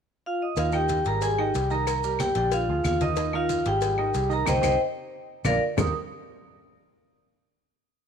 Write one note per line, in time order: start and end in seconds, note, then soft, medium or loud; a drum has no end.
0.26 0.41 F4 medium
0.26 0.42 F5 medium
0.42 0.57 D#5 medium
0.42 0.57 D#6 medium
0.56 1.02 D#2 loud
0.56 0.70 D#3 medium
0.56 0.70 D#4 medium
0.56 0.73 F4 medium
0.56 0.70 D#5 medium
0.56 0.73 F5 loud
0.56 cowbell loud
0.56 high conga soft
0.56 maracas medium
0.72 0.99 D#3 medium
0.72 0.99 D#4 medium
0.72 1.05 G4 medium
0.72 1.00 D#5 medium
0.72 1.07 G5 loud
0.72 high conga soft
0.72 claves medium
0.72 maracas medium
0.88 cowbell medium
0.88 high conga medium
0.88 maracas medium
1.05 1.51 G#1 medium
1.05 1.19 G3 medium
1.05 1.19 G4 medium
1.05 1.19 G#4 medium
1.05 1.22 A#4 medium
1.05 1.21 A#5 medium
1.05 cowbell medium
1.05 high conga soft
1.05 maracas soft
1.21 1.35 G3 medium
1.21 1.36 G4 medium
1.21 1.36 G#4 medium
1.21 1.38 G#4 medium
1.21 1.39 G#5 medium
1.21 cowbell loud
1.21 high conga soft
1.21 maracas medium
1.38 1.52 D#3 medium
1.38 1.52 D#4 medium
1.38 1.69 G4 medium
1.38 1.52 D#5 medium
1.38 1.69 G5 medium
1.38 high conga soft
1.38 claves medium
1.55 2.30 C2 medium
1.55 1.68 G3 medium
1.55 1.68 G4 medium
1.55 1.68 G#4 medium
1.55 cowbell medium
1.55 high conga soft
1.55 maracas medium
1.70 1.97 D#3 medium
1.70 1.97 D#4 medium
1.70 2.16 A#4 medium
1.70 1.97 D#5 medium
1.70 2.16 A#5 loud
1.70 maracas soft
1.87 cowbell loud
1.87 high conga soft
1.87 claves medium
1.87 maracas medium
2.04 2.30 G3 medium
2.04 2.30 G4 medium
2.04 2.31 A#4 medium
2.04 high conga soft
2.04 maracas medium
2.19 2.35 G4 medium
2.19 2.35 G5 medium
2.19 cowbell medium
2.19 high conga medium
2.19 claves medium
2.19 maracas medium
2.35 2.66 A#1 medium
2.35 2.62 D3 medium
2.35 2.63 D4 medium
2.35 2.44 G4 medium
2.35 2.63 D5 medium
2.35 2.43 G5 medium
2.35 cowbell medium
2.35 maracas soft
2.52 2.83 F4 medium
2.52 2.83 F5 medium
2.52 cowbell loud
2.52 high conga soft
2.52 maracas medium
2.68 2.83 D2 medium
2.68 2.95 F3 medium
2.68 2.96 F4 medium
2.68 2.96 G#4 medium
2.68 high conga soft
2.84 3.60 D#2 loud
2.84 2.93 F4 medium
2.84 2.93 F5 medium
2.84 cowbell medium
2.84 high conga medium
2.84 claves medium
2.84 maracas medium
3.01 3.14 D#3 loud
3.01 3.15 D#4 loud
3.01 3.15 D#5 medium
3.01 3.32 D#5 medium
3.01 3.32 D#6 medium
3.01 cowbell medium
3.01 high conga medium
3.01 maracas soft
3.16 3.30 D#3 medium
3.16 3.31 D#4 medium
3.16 3.31 D#5 medium
3.16 cowbell loud
3.16 high conga soft
3.16 maracas medium
3.33 3.60 D#3 loud
3.33 3.60 D#4 medium
3.33 3.65 F4 medium
3.33 3.60 D#5 loud
3.33 3.68 F5 medium
3.33 high conga soft
3.33 claves medium
3.49 cowbell medium
3.49 high conga medium
3.49 maracas medium
3.65 4.11 G#1 medium
3.65 3.79 G3 medium
3.65 3.79 G4 medium
3.65 4.28 G4 medium
3.65 3.80 G#4 medium
3.65 4.28 G5 loud
3.65 cowbell medium
3.65 high conga soft
3.65 maracas soft
3.81 3.95 G3 medium
3.81 3.95 G4 medium
3.81 3.95 G#4 medium
3.81 cowbell loud
3.81 high conga soft
3.81 maracas medium
3.98 4.11 D#3 medium
3.98 4.12 D#4 medium
3.98 4.12 D#5 medium
3.98 high conga soft
3.98 claves medium
4.14 4.45 C2 medium
4.14 4.28 G3 medium
4.14 4.28 G4 medium
4.14 4.28 G#4 medium
4.14 cowbell medium
4.14 high conga soft
4.14 maracas medium
4.29 4.43 D#3 medium
4.29 4.43 D#4 medium
4.29 4.47 A#4 medium
4.29 4.44 D#5 loud
4.29 maracas soft
4.33 4.49 A#5 loud
4.45 4.59 C2 loud
4.45 4.57 C4 loud
4.45 4.56 D#4 medium
4.45 4.57 G4 loud
4.45 4.58 C5 loud
4.45 4.58 D#5 loud
4.45 4.58 G5 loud
4.45 cowbell loud
4.45 high conga loud
4.45 claves loud
4.45 maracas loud
4.62 4.75 C2 loud
4.62 4.73 C4 loud
4.62 4.73 D#4 medium
4.62 4.73 G4 loud
4.62 4.74 C5 loud
4.62 4.74 D#5 loud
4.62 4.74 G5 loud
4.62 cowbell medium
4.62 high conga medium
4.62 claves loud
4.62 maracas loud
5.44 5.57 A#1 loud
5.44 5.55 A#3 loud
5.44 5.55 D4 loud
5.44 5.55 F4 loud
5.44 5.56 A#4 loud
5.44 5.56 D5 medium
5.44 5.56 F5 medium
5.44 cowbell medium
5.44 high conga loud
5.44 claves loud
5.44 maracas loud
5.77 5.92 D#2 loud
5.77 5.92 D#3 medium
5.77 5.92 A#3 medium
5.77 5.92 C4 medium
5.77 5.93 D#4 medium
5.77 5.93 G4 medium
5.77 5.93 A#4 medium
5.77 5.94 D#6 medium
5.77 low bongo loud
5.77 low conga loud
5.77 claves loud
5.77 maracas loud